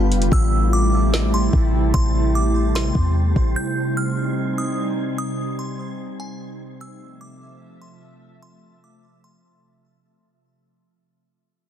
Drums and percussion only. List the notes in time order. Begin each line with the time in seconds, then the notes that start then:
0.12 closed hi-hat
0.22 closed hi-hat
0.32 kick
1.14 snare
1.53 kick
1.94 kick
2.76 snare
2.95 kick
3.36 kick